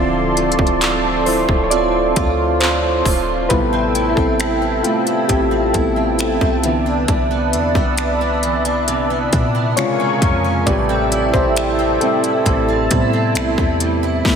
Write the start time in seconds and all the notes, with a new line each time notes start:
Already playing: D1 D3 F3 A3 C4 E4 F4 A4 D5 A5 C6
0.37 A3, closed hi-hat
0.52 closed hi-hat
0.59 D1, kick
0.67 closed hi-hat
0.81 C4, clap, closed hi-hat
1.26 A3 E4 C5, open hi-hat
1.49 D1, kick
1.64 C#5
1.70 C4 F4 D5, closed hi-hat
2.16 D2 F4, kick, closed hi-hat
2.60 C4 F4 C5, clap, closed hi-hat
3.05 D1 F4, kick, open hi-hat
3.49 A1 A2 C3 G3 B3 E4 A4 B4 E5 G5 A5, kick, closed hi-hat
3.73 C4
3.95 E4, closed hi-hat
4.09 B4
4.16 A1 C4 A4, kick
4.40 E4, finger snap, closed hi-hat
4.62 C4
4.83 G3 A3 F4, closed hi-hat
5.07 E4, closed hi-hat
5.28 A1 A2 C4 G4, kick, closed hi-hat
5.51 C4
5.73 A1 C3 G3 B3 C4 E4 A4, kick, closed hi-hat
5.96 C4
6.18 E4, finger snap, closed hi-hat
6.41 C2 C4, kick
6.63 C3 D3 E3 B3 B4 D5 E5, closed hi-hat
6.86 D4
7.08 C2 C3, kick, closed hi-hat
7.31 B3
7.53 E2 D4, closed hi-hat
7.75 C2 B3, kick
7.98 D4, finger snap, closed hi-hat
8.21 B3
8.43 E3, closed hi-hat
8.65 D4, closed hi-hat
8.88 C3, closed hi-hat
9.10 B3
9.32 A#2 D4, kick, closed hi-hat
9.55 B3
9.76 A#2 C3 C#3 G#3 F4 A#4 C#5 F5 G#5 C#6, finger snap, closed hi-hat
10.00 G#3
10.22 F2 F3, kick, closed hi-hat
10.44 C#4
10.66 A1 A2 C3 G3 G4 A4 B4 D5 E5 G5, kick, closed hi-hat
10.89 C4
11.11 E4, closed hi-hat
11.33 A1 C4 E4 C5, kick
11.56 E4, finger snap, closed hi-hat
11.79 C4
12.01 G3 C4 A4, closed hi-hat
12.23 E4, closed hi-hat
12.46 A1 A2 A5, kick, closed hi-hat
12.68 C4
12.91 A2 C3 G3 B3 E4, kick, closed hi-hat
13.13 C4
13.35 B1 E4, finger snap, closed hi-hat
13.58 E2 C4, kick
13.80 G3, closed hi-hat
14.03 E4
14.25 F3 A3 B3, kick, snare